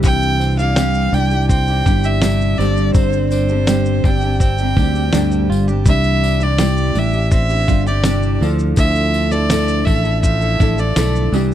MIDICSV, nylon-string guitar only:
0, 0, Header, 1, 2, 480
1, 0, Start_track
1, 0, Key_signature, 0, "major"
1, 0, Tempo, 729040
1, 22, Time_signature, 4, 2, 24, 8
1, 7598, End_track
2, 0, Start_track
2, 0, Title_t, "Nylon-string guitar"
2, 0, Program_c, 0, 24
2, 0, Note_on_c, 0, 48, 82
2, 0, Note_on_c, 0, 55, 87
2, 0, Note_on_c, 0, 62, 92
2, 0, Note_on_c, 0, 64, 90
2, 0, Note_on_c, 0, 67, 88
2, 380, Note_off_c, 0, 67, 0
2, 381, Note_off_c, 0, 48, 0
2, 383, Note_on_c, 0, 67, 59
2, 384, Note_off_c, 0, 64, 0
2, 391, Note_on_c, 0, 64, 51
2, 396, Note_off_c, 0, 62, 0
2, 398, Note_on_c, 0, 62, 43
2, 502, Note_off_c, 0, 67, 0
2, 505, Note_off_c, 0, 62, 0
2, 505, Note_on_c, 0, 48, 79
2, 506, Note_off_c, 0, 64, 0
2, 508, Note_off_c, 0, 55, 0
2, 511, Note_on_c, 0, 55, 74
2, 513, Note_on_c, 0, 62, 77
2, 521, Note_on_c, 0, 67, 90
2, 737, Note_off_c, 0, 55, 0
2, 743, Note_off_c, 0, 48, 0
2, 745, Note_off_c, 0, 62, 0
2, 745, Note_on_c, 0, 55, 59
2, 751, Note_off_c, 0, 67, 0
2, 753, Note_on_c, 0, 62, 63
2, 758, Note_on_c, 0, 64, 70
2, 763, Note_on_c, 0, 67, 65
2, 858, Note_off_c, 0, 67, 0
2, 863, Note_off_c, 0, 55, 0
2, 866, Note_off_c, 0, 64, 0
2, 866, Note_on_c, 0, 67, 53
2, 867, Note_off_c, 0, 62, 0
2, 874, Note_on_c, 0, 64, 45
2, 884, Note_on_c, 0, 62, 41
2, 1095, Note_off_c, 0, 67, 0
2, 1103, Note_off_c, 0, 64, 0
2, 1103, Note_on_c, 0, 67, 58
2, 1111, Note_on_c, 0, 64, 53
2, 1112, Note_off_c, 0, 62, 0
2, 1120, Note_on_c, 0, 62, 45
2, 1220, Note_off_c, 0, 62, 0
2, 1221, Note_on_c, 0, 55, 56
2, 1222, Note_off_c, 0, 67, 0
2, 1226, Note_off_c, 0, 64, 0
2, 1228, Note_on_c, 0, 62, 68
2, 1234, Note_on_c, 0, 64, 62
2, 1239, Note_on_c, 0, 67, 66
2, 1454, Note_off_c, 0, 55, 0
2, 1458, Note_off_c, 0, 62, 0
2, 1458, Note_on_c, 0, 48, 76
2, 1462, Note_off_c, 0, 64, 0
2, 1462, Note_on_c, 0, 55, 77
2, 1463, Note_off_c, 0, 67, 0
2, 1466, Note_on_c, 0, 62, 75
2, 1469, Note_on_c, 0, 64, 80
2, 1470, Note_on_c, 0, 67, 81
2, 1695, Note_off_c, 0, 55, 0
2, 1697, Note_off_c, 0, 48, 0
2, 1697, Note_on_c, 0, 43, 76
2, 1699, Note_on_c, 0, 50, 75
2, 1701, Note_off_c, 0, 67, 0
2, 1702, Note_on_c, 0, 55, 72
2, 1703, Note_off_c, 0, 62, 0
2, 1705, Note_off_c, 0, 64, 0
2, 1705, Note_on_c, 0, 60, 81
2, 1709, Note_on_c, 0, 67, 90
2, 1710, Note_on_c, 0, 62, 86
2, 2297, Note_off_c, 0, 67, 0
2, 2298, Note_off_c, 0, 43, 0
2, 2299, Note_on_c, 0, 67, 56
2, 2302, Note_off_c, 0, 62, 0
2, 2304, Note_on_c, 0, 62, 52
2, 2307, Note_off_c, 0, 60, 0
2, 2310, Note_on_c, 0, 60, 48
2, 2314, Note_off_c, 0, 55, 0
2, 2317, Note_on_c, 0, 55, 42
2, 2330, Note_off_c, 0, 50, 0
2, 2418, Note_off_c, 0, 55, 0
2, 2419, Note_off_c, 0, 67, 0
2, 2419, Note_on_c, 0, 43, 75
2, 2422, Note_off_c, 0, 60, 0
2, 2422, Note_off_c, 0, 62, 0
2, 2423, Note_on_c, 0, 50, 69
2, 2426, Note_on_c, 0, 55, 77
2, 2430, Note_on_c, 0, 60, 77
2, 2431, Note_on_c, 0, 62, 80
2, 2432, Note_on_c, 0, 67, 89
2, 2653, Note_off_c, 0, 55, 0
2, 2658, Note_off_c, 0, 60, 0
2, 2659, Note_off_c, 0, 43, 0
2, 2661, Note_off_c, 0, 50, 0
2, 2661, Note_on_c, 0, 55, 59
2, 2665, Note_off_c, 0, 62, 0
2, 2666, Note_off_c, 0, 67, 0
2, 2666, Note_on_c, 0, 60, 60
2, 2672, Note_on_c, 0, 62, 59
2, 2679, Note_on_c, 0, 67, 66
2, 2776, Note_off_c, 0, 67, 0
2, 2780, Note_off_c, 0, 55, 0
2, 2783, Note_off_c, 0, 60, 0
2, 2783, Note_off_c, 0, 62, 0
2, 2784, Note_on_c, 0, 67, 49
2, 2791, Note_on_c, 0, 62, 51
2, 2796, Note_on_c, 0, 60, 41
2, 2802, Note_on_c, 0, 55, 41
2, 3011, Note_off_c, 0, 67, 0
2, 3019, Note_off_c, 0, 62, 0
2, 3019, Note_on_c, 0, 67, 50
2, 3027, Note_on_c, 0, 62, 53
2, 3028, Note_off_c, 0, 60, 0
2, 3031, Note_off_c, 0, 55, 0
2, 3035, Note_on_c, 0, 60, 47
2, 3040, Note_on_c, 0, 55, 47
2, 3129, Note_off_c, 0, 55, 0
2, 3137, Note_on_c, 0, 55, 62
2, 3139, Note_off_c, 0, 60, 0
2, 3139, Note_off_c, 0, 67, 0
2, 3143, Note_off_c, 0, 62, 0
2, 3147, Note_on_c, 0, 60, 59
2, 3151, Note_on_c, 0, 62, 64
2, 3157, Note_on_c, 0, 67, 64
2, 3245, Note_off_c, 0, 67, 0
2, 3253, Note_on_c, 0, 67, 46
2, 3255, Note_off_c, 0, 62, 0
2, 3258, Note_off_c, 0, 55, 0
2, 3260, Note_off_c, 0, 60, 0
2, 3263, Note_on_c, 0, 62, 43
2, 3268, Note_on_c, 0, 60, 43
2, 3273, Note_on_c, 0, 55, 43
2, 3375, Note_off_c, 0, 55, 0
2, 3376, Note_off_c, 0, 67, 0
2, 3377, Note_on_c, 0, 43, 66
2, 3378, Note_off_c, 0, 60, 0
2, 3379, Note_off_c, 0, 62, 0
2, 3381, Note_on_c, 0, 50, 69
2, 3383, Note_on_c, 0, 55, 76
2, 3385, Note_on_c, 0, 60, 76
2, 3387, Note_on_c, 0, 62, 77
2, 3390, Note_on_c, 0, 67, 75
2, 3730, Note_off_c, 0, 67, 0
2, 3738, Note_off_c, 0, 43, 0
2, 3738, Note_off_c, 0, 62, 0
2, 3738, Note_on_c, 0, 67, 51
2, 3740, Note_off_c, 0, 50, 0
2, 3741, Note_off_c, 0, 55, 0
2, 3742, Note_off_c, 0, 60, 0
2, 3746, Note_on_c, 0, 62, 50
2, 3753, Note_on_c, 0, 60, 44
2, 3756, Note_on_c, 0, 55, 44
2, 3854, Note_off_c, 0, 55, 0
2, 3856, Note_off_c, 0, 62, 0
2, 3858, Note_on_c, 0, 48, 79
2, 3859, Note_off_c, 0, 67, 0
2, 3862, Note_off_c, 0, 60, 0
2, 3862, Note_on_c, 0, 55, 72
2, 3864, Note_on_c, 0, 62, 91
2, 3868, Note_on_c, 0, 64, 80
2, 3870, Note_on_c, 0, 67, 88
2, 4206, Note_off_c, 0, 67, 0
2, 4214, Note_on_c, 0, 67, 55
2, 4215, Note_off_c, 0, 64, 0
2, 4219, Note_off_c, 0, 48, 0
2, 4221, Note_off_c, 0, 55, 0
2, 4222, Note_off_c, 0, 62, 0
2, 4223, Note_on_c, 0, 64, 46
2, 4233, Note_on_c, 0, 62, 46
2, 4336, Note_off_c, 0, 62, 0
2, 4336, Note_on_c, 0, 48, 70
2, 4337, Note_off_c, 0, 67, 0
2, 4339, Note_off_c, 0, 64, 0
2, 4340, Note_on_c, 0, 55, 79
2, 4344, Note_on_c, 0, 62, 84
2, 4347, Note_on_c, 0, 64, 80
2, 4348, Note_on_c, 0, 67, 80
2, 4566, Note_off_c, 0, 55, 0
2, 4572, Note_off_c, 0, 62, 0
2, 4574, Note_on_c, 0, 55, 55
2, 4578, Note_off_c, 0, 48, 0
2, 4580, Note_off_c, 0, 64, 0
2, 4580, Note_on_c, 0, 62, 64
2, 4584, Note_off_c, 0, 67, 0
2, 4588, Note_on_c, 0, 64, 69
2, 4592, Note_on_c, 0, 67, 65
2, 4683, Note_off_c, 0, 67, 0
2, 4691, Note_off_c, 0, 64, 0
2, 4691, Note_on_c, 0, 67, 53
2, 4697, Note_off_c, 0, 55, 0
2, 4699, Note_on_c, 0, 64, 47
2, 4700, Note_off_c, 0, 62, 0
2, 4708, Note_on_c, 0, 62, 41
2, 4924, Note_off_c, 0, 67, 0
2, 4932, Note_on_c, 0, 67, 53
2, 4934, Note_off_c, 0, 64, 0
2, 4942, Note_on_c, 0, 64, 50
2, 4944, Note_off_c, 0, 62, 0
2, 4954, Note_on_c, 0, 62, 41
2, 5049, Note_off_c, 0, 62, 0
2, 5053, Note_on_c, 0, 55, 59
2, 5054, Note_off_c, 0, 64, 0
2, 5056, Note_off_c, 0, 67, 0
2, 5057, Note_on_c, 0, 62, 60
2, 5062, Note_on_c, 0, 64, 66
2, 5070, Note_on_c, 0, 67, 63
2, 5162, Note_off_c, 0, 67, 0
2, 5170, Note_on_c, 0, 67, 53
2, 5172, Note_off_c, 0, 64, 0
2, 5176, Note_off_c, 0, 55, 0
2, 5179, Note_off_c, 0, 62, 0
2, 5180, Note_on_c, 0, 64, 45
2, 5191, Note_on_c, 0, 62, 40
2, 5292, Note_off_c, 0, 62, 0
2, 5294, Note_on_c, 0, 48, 70
2, 5295, Note_off_c, 0, 67, 0
2, 5296, Note_off_c, 0, 64, 0
2, 5296, Note_on_c, 0, 55, 76
2, 5300, Note_on_c, 0, 62, 80
2, 5304, Note_on_c, 0, 64, 82
2, 5307, Note_on_c, 0, 67, 83
2, 5528, Note_off_c, 0, 48, 0
2, 5530, Note_off_c, 0, 62, 0
2, 5530, Note_on_c, 0, 50, 71
2, 5531, Note_off_c, 0, 55, 0
2, 5534, Note_on_c, 0, 53, 76
2, 5535, Note_off_c, 0, 64, 0
2, 5538, Note_on_c, 0, 62, 82
2, 5543, Note_off_c, 0, 67, 0
2, 5543, Note_on_c, 0, 64, 79
2, 5546, Note_on_c, 0, 69, 92
2, 6123, Note_off_c, 0, 69, 0
2, 6131, Note_on_c, 0, 69, 59
2, 6137, Note_off_c, 0, 53, 0
2, 6139, Note_off_c, 0, 64, 0
2, 6142, Note_on_c, 0, 64, 52
2, 6147, Note_off_c, 0, 62, 0
2, 6150, Note_on_c, 0, 62, 47
2, 6162, Note_off_c, 0, 50, 0
2, 6252, Note_on_c, 0, 50, 74
2, 6253, Note_off_c, 0, 62, 0
2, 6256, Note_off_c, 0, 64, 0
2, 6256, Note_off_c, 0, 69, 0
2, 6258, Note_on_c, 0, 53, 76
2, 6260, Note_on_c, 0, 62, 74
2, 6264, Note_on_c, 0, 64, 76
2, 6265, Note_on_c, 0, 69, 81
2, 6479, Note_off_c, 0, 53, 0
2, 6486, Note_off_c, 0, 62, 0
2, 6487, Note_on_c, 0, 53, 60
2, 6494, Note_off_c, 0, 64, 0
2, 6494, Note_on_c, 0, 62, 67
2, 6496, Note_off_c, 0, 50, 0
2, 6500, Note_off_c, 0, 69, 0
2, 6502, Note_on_c, 0, 64, 67
2, 6508, Note_on_c, 0, 69, 65
2, 6603, Note_off_c, 0, 69, 0
2, 6611, Note_on_c, 0, 69, 54
2, 6614, Note_off_c, 0, 53, 0
2, 6616, Note_off_c, 0, 64, 0
2, 6617, Note_off_c, 0, 62, 0
2, 6624, Note_on_c, 0, 64, 49
2, 6631, Note_on_c, 0, 62, 44
2, 6842, Note_off_c, 0, 69, 0
2, 6850, Note_on_c, 0, 69, 53
2, 6853, Note_off_c, 0, 64, 0
2, 6861, Note_on_c, 0, 64, 48
2, 6862, Note_off_c, 0, 62, 0
2, 6870, Note_on_c, 0, 62, 49
2, 6970, Note_off_c, 0, 62, 0
2, 6970, Note_on_c, 0, 53, 65
2, 6975, Note_off_c, 0, 69, 0
2, 6977, Note_off_c, 0, 64, 0
2, 6978, Note_on_c, 0, 62, 66
2, 6985, Note_on_c, 0, 64, 65
2, 6990, Note_on_c, 0, 69, 68
2, 7083, Note_off_c, 0, 69, 0
2, 7091, Note_on_c, 0, 69, 51
2, 7094, Note_off_c, 0, 64, 0
2, 7095, Note_off_c, 0, 53, 0
2, 7099, Note_off_c, 0, 62, 0
2, 7102, Note_on_c, 0, 64, 44
2, 7111, Note_on_c, 0, 62, 44
2, 7210, Note_off_c, 0, 62, 0
2, 7213, Note_on_c, 0, 50, 76
2, 7216, Note_off_c, 0, 64, 0
2, 7216, Note_off_c, 0, 69, 0
2, 7217, Note_on_c, 0, 53, 74
2, 7218, Note_on_c, 0, 62, 84
2, 7223, Note_on_c, 0, 64, 81
2, 7227, Note_on_c, 0, 69, 85
2, 7452, Note_off_c, 0, 50, 0
2, 7454, Note_on_c, 0, 48, 80
2, 7455, Note_off_c, 0, 62, 0
2, 7457, Note_off_c, 0, 53, 0
2, 7458, Note_off_c, 0, 64, 0
2, 7460, Note_on_c, 0, 55, 74
2, 7463, Note_on_c, 0, 62, 88
2, 7464, Note_off_c, 0, 69, 0
2, 7466, Note_on_c, 0, 64, 85
2, 7470, Note_on_c, 0, 67, 87
2, 7598, Note_off_c, 0, 48, 0
2, 7598, Note_off_c, 0, 55, 0
2, 7598, Note_off_c, 0, 62, 0
2, 7598, Note_off_c, 0, 64, 0
2, 7598, Note_off_c, 0, 67, 0
2, 7598, End_track
0, 0, End_of_file